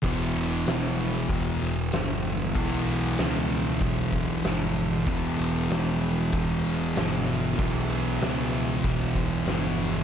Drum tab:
HH |oooooooo|oooooooo|oooooooo|oooooooo|
SD |--o---o-|--o---o-|--o---o-|--o---o-|
BD |o---o---|o---oo--|o---o---|o---oo--|